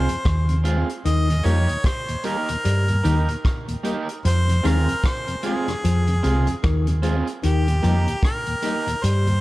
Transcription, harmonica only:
Already playing: C5
1.06 D#5
1.46 C#5
1.86 C5
2.26 A#4
4.26 C5
4.66 A#4
5.06 C5
5.46 G#4
7.45 G4
8.25 A#4
9.04 C5

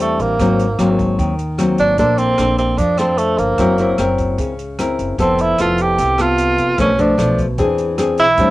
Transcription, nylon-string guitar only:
Already playing: E3 G3 C4 D4
0.40 G#2 F#3 A#3 C4
0.79 F#3 A#3 C4
1.19 D#3
1.58 F#3 A#3 C4
1.98 A#3 D4 A4 C5
2.39 D4 A4 C5
2.79 F3
2.99 D4 A4 C5
3.59 F#3 C4 E4 A#4
3.79 C4 E4 A#4
3.99 C4 E4 A#4
4.39 C#3
4.79 C4 E4 A#4
5.19 F3 B3 E4 A4
5.59 B3 E4 A4
5.99 C3
6.18 B3 A4
6.78 B2 F3 A3 D4
6.98 F3 A3 D4
7.18 F3 A3 D4
7.58 E3 C4 D4 G#4
7.98 C4 D4 G#4
8.39 A2 G3 C4 D4

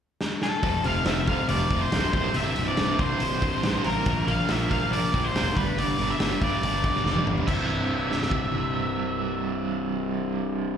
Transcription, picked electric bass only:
0.63 F1
0.84 F1
1.05 F1
1.49 F1
1.70 F1
1.92 D1
2.13 C1
2.35 C1
2.57 C1
2.78 C1
2.99 C2
3.21 C1
3.64 A1
3.85 A1
4.06 A#1
4.27 A#1
4.50 A#1
4.91 A#1
5.14 A#1
5.35 F1
5.56 G1
5.77 G1
5.98 G1
6.20 G1
6.42 G2
6.62 G1
7.04 F1
7.25 G1
7.48 C1

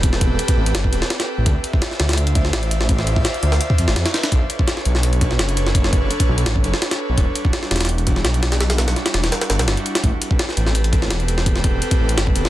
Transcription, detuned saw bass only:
Already playing: E1
0.57 A1
0.75 G1
0.93 E1
1.38 A1
1.46 D2
2.00 D2
2.54 A1
3.43 D2
3.79 F2
3.88 A1
3.96 F2
4.32 B1
4.86 B1
5.39 F#1
6.28 B1
6.46 A1
6.64 F#1
7.09 B1
7.18 E1
7.71 E1
8.25 B1
9.14 E1
9.50 G1
9.59 B1
9.68 G1
10.03 A1
10.57 A1
11.11 E1
12.00 A1
12.18 G1
12.35 E1

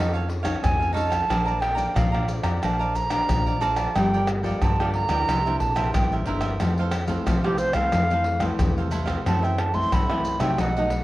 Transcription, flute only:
0.63 G#5
0.95 A5
1.61 G5
1.96 F5
2.63 A5
2.95 A#5
3.61 A5
3.96 G5
4.61 A5
4.94 A#5
5.59 A5
5.93 G5
7.43 G4
7.58 C5
7.74 F5
9.28 A5
9.44 G5
9.59 A5
9.74 C6
9.93 B5
10.41 G5
10.60 F#5

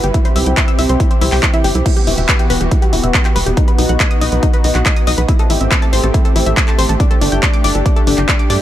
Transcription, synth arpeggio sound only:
0.04 G4
0.14 E4
0.25 C5
0.36 E5
0.47 G5
0.57 E5
0.68 E6
0.79 E5
0.89 C5
1.00 E4
1.11 C5
1.21 E4
1.32 G5
1.43 E4
1.54 E4
1.64 G4
1.75 E4
1.86 E4
1.97 G4
2.07 E4
2.18 E5
2.29 B4
2.39 G5
2.50 B4
2.61 G4
2.71 E4
2.82 G4
2.93 E4
3.04 E5
3.14 B4
3.25 G5
3.36 B4
3.46 G4
3.57 D#4
3.68 B4
3.78 D#4
3.89 F#5
4.00 D#5
4.11 D#6
4.21 D#5
4.32 B4
4.43 D#4
4.54 B4
4.64 D#4
4.75 F#5
4.86 D#5
4.96 D#6
5.07 D#5
5.18 B4
5.29 E4
5.39 A4
5.50 E4
5.61 E5
5.71 C5
5.82 A5
5.93 C5
6.04 A4
6.14 E4
6.25 A4
6.36 E4
6.46 E5
6.57 C5
6.68 A5
6.78 C5
6.89 A4
7.00 D4
7.11 A4
7.21 D4
7.32 G5
7.43 D5
7.53 D6
7.64 D5
7.75 A4
7.86 D4
7.96 A4
8.07 D4
8.18 G5
8.28 D5
8.39 D6
8.50 D5

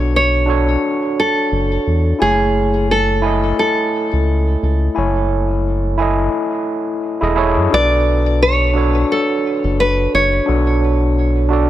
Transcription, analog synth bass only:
Already playing: B1
1.52 F#1
1.87 E2
2.21 F#1
4.13 C#2
4.63 C#2
4.97 F#1
7.22 E1
7.56 F#2
7.73 B1
9.64 F#1
10.14 F#1
10.48 B1

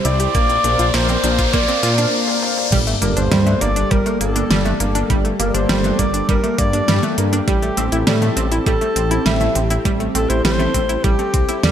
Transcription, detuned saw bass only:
0.05 C2
0.35 A#1
0.64 A#1
0.79 A#1
0.94 A#1
1.24 A#1
1.54 A#1
1.83 A#2
2.72 G1
3.02 G1
3.17 G1
3.32 G2
3.61 G1
3.91 G1
4.21 G1
4.51 G1
4.80 G1
5.10 G1
5.40 G1
5.55 G1
5.70 G1
5.99 G1
6.29 G1
6.59 G2
6.88 G2
7.18 G2
7.48 A1
7.77 A1
7.92 A1
8.07 A2
8.37 A1
8.66 A1
8.96 A1
9.26 A1
9.55 A1
9.85 A1
10.15 A1
10.30 A1
10.45 A1
10.74 A1
11.04 A1
11.34 C2
11.63 E2

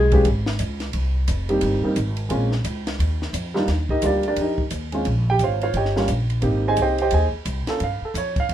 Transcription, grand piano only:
0.12 G#3 B3 C#4 F4 G4
1.49 G3 A#3 C4 D#4 G4
1.83 G3 A#3 C4 D#4 A#4
2.29 G#3 A#3 C4 C#4 F4
3.54 G3 A#3 D4 D#4 F4
3.90 D#4 G4 A#4 D#5
4.02 G3 A#3 D4 F4 G4 D5
4.07 A#4
4.28 D4 G4 A#4 D5
4.41 D#4 G4 A#4 D#5
4.92 G#3 C4 C#4 F4
5.30 G4 G5
5.43 F4 C5 C#5 F5
5.63 F4 C5 C#5 F5
5.77 G4 C#5 D#5 G5
5.96 G3 A#3 C#4 F4
6.42 A#3 C4 D#4 G4
6.68 G#4 C5 D#5 G#5
6.82 G4 C5 D#5 G5
7.02 G4 C5 D#5 G5
7.14 G#4 C5 D#5 G#5
7.67 A#3 C#4 F4 A4
7.84 F5
8.05 A4
8.18 C#5
8.40 F5

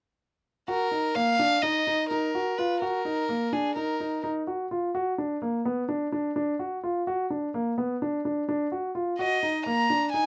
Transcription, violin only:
0.69 A#4
1.16 F5
1.62 D#5
2.10 A#4
2.58 B4
2.80 A#4
3.52 G#4
3.76 A#4
9.19 D#5
9.66 A#5
10.12 G#5

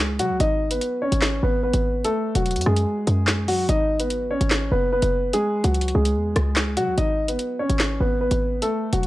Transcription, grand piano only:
Already playing: G#3 G#4
0.19 F#3 F#4
0.40 D#4 D#5
0.71 B3 B4
1.02 C#4 C#5
1.43 B3 B4
1.63 B3 B4
2.05 A3 A4
2.36 F#3 F#4
2.66 G#3 G#4
3.48 F#3 F#4
3.69 D#4 D#5
4.00 B3 B4
4.31 C#4 C#5
4.72 B3 B4
4.92 B3 B4
5.33 G#3 G#4
5.64 F#3 F#4
5.95 G#3 G#4
6.77 F#3 F#4
6.98 D#4 D#5
7.29 B3 B4
7.59 C#4 C#5
8.01 B3 B4
8.21 B3 B4
8.62 A3 A4
8.93 F#3 F#4

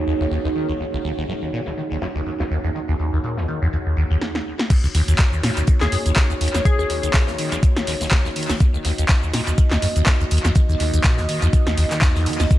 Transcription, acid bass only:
0.07 D#2
0.20 D#2
0.31 D#2
0.45 D#2
0.56 D#3
0.69 D#2
0.80 D#2
0.94 C#2
1.04 D#2
1.18 D#2
1.29 F#2
1.42 D#2
1.53 A#2
1.67 D#2
1.78 D#3
1.91 D#2
2.02 F#2
2.15 D#2
2.26 F#2
2.40 D#2
2.51 D#2
2.64 E2
2.75 D#3
2.89 D#2
2.99 D#2
3.13 D#2
3.24 A#2
3.37 D#2
3.48 D#3
3.62 E2
3.73 D#2
3.86 D#2
3.97 D#2
4.11 D#2
4.70 D#2
4.84 C#2
4.95 D#2
5.08 D#2
5.19 F#2
5.33 D#2
5.43 A#2
5.57 D#2
5.68 D#3
5.81 D#2
5.92 F#2
6.06 D#2
6.17 F#2
6.30 D#2
6.41 D#2
6.54 E2
6.65 D#3
6.79 D#2
6.90 D#2
7.03 D#2
7.14 A#2
7.28 D#2
7.39 D#3
7.52 E2
7.63 D#2
7.77 D#2
7.87 D#2
8.01 D#2
8.12 D#2
8.25 D#2
8.36 D#3
8.50 D#2
8.61 D#2
8.74 C#2
8.85 D#2
8.98 D#2
9.09 F#2
9.23 D#2
9.34 A#2
9.47 D#2
9.58 D#3
9.72 D#2
9.82 F#2
9.96 D#2
10.07 F#2
10.20 D#2
10.31 D#2
10.45 E2
10.56 D#3
10.69 D#2
10.80 D#2
10.94 D#2
11.04 A#2
11.18 D#2
11.29 D#3
11.42 E2
11.53 D#2
11.67 D#2
11.77 D#2
11.91 D#3
12.02 D#2
12.15 E2
12.26 D#3
12.40 D#2
12.51 D#2

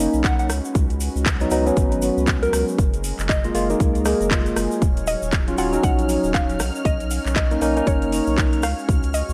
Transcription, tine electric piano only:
Already playing: A#3 C#4 D#4
1.41 F#3 B3 D#4
1.51 F#3 B3 D#4
1.66 F#3 B3 C#4
3.44 G#3 A#3 F4
3.55 G#3 A#3 F4
3.70 G#3 A#3 D#4
4.05 G#3 A#3 G#4
4.31 G#3 A#3 F4
5.48 F#3 C#4 F4
5.58 F#3 C#4 F4
5.73 F#3 C#4 D#4
7.51 A#3 C#4 D#4
7.61 A#3 C#4 D#4
7.76 A#3 C#4 D#4

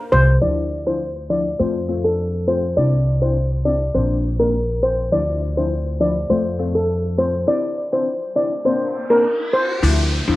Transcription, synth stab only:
0.42 F3 D4 E4
0.86 F3 D4 E4
1.30 F3 D4 E4
1.59 A3 C4 F4
1.89 A3 C4 F4
2.48 A3 C4 F4
2.77 C4 D4 E4
3.22 C4 D4 E4
3.65 C4 D4 E4
3.94 A#3 C4 D4
4.39 A#3 C4 D4
5.12 F3 D4 E4
5.57 F3 D4 E4
6.00 F3 D4 E4
6.30 A3 C4 F4
6.59 A3 C4 F4
7.18 A3 C4 F4
7.47 C4 D4 E4
7.92 C4 D4 E4
8.36 C4 D4 E4
8.65 A#3 C4 D4
9.10 A#3 C4 D4
9.83 F3 D4 E4
10.28 F3 D4 E4

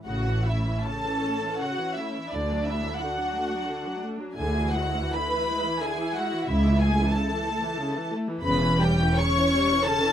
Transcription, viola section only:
0.06 C#3 C#4
0.25 E3
0.46 A3
0.65 E3
0.86 C#3
1.04 E3
1.23 A3
1.41 E3
1.60 C#3
1.79 E3
1.98 A3
2.16 E3
2.33 D3 D4
2.51 F#3
2.68 A3
2.83 F#3
3.01 D3
3.16 F#3
3.34 A3
3.50 F#3
3.66 D3
3.85 F#3
4.00 A3
4.18 F#3
4.36 D3 E4
4.55 E3
4.74 G#3
4.95 E3
5.13 D3
5.31 E3
5.48 G#3
5.65 E3
5.80 D3
5.97 E3
6.13 G#3
6.31 E3
6.48 C#3
6.64 E3
6.81 A3
6.98 E3
7.15 C#3
7.30 E3
7.46 A3
7.62 E3
7.78 C#3
7.94 E3
8.10 A3
8.26 E3
8.43 C#3 C#4
8.59 E3
8.78 G3
8.99 E3
9.17 C#3
9.34 E3
9.52 G3
9.68 E3
9.85 C#3
10.02 E3

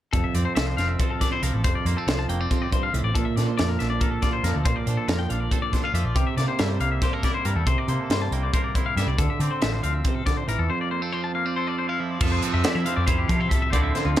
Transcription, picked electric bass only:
0.14 F1
0.35 F2
0.56 C2
0.77 F1
1.43 C2
1.54 A1
1.65 F1
1.85 F2
2.07 C2
2.28 F1
2.94 C2
3.04 A1
3.37 A#2
3.60 F2
3.81 A#1
4.43 F2
4.55 D2
4.65 A#1
4.87 A#2
5.08 F2
5.30 A#1
5.94 F2
6.04 A#1
6.16 C2
6.37 C3
6.60 G2
6.80 C2
7.45 G2
7.55 E2
7.67 C2
7.88 C3
8.10 G2
8.31 C2
8.96 G2
9.07 C2
9.18 D2
9.40 D3
9.63 A1
9.83 D2
10.48 A1
10.59 E2
12.21 F2
12.54 F2
12.75 F3
12.97 F2
13.29 F3
13.51 C2
13.73 D2
14.05 D2

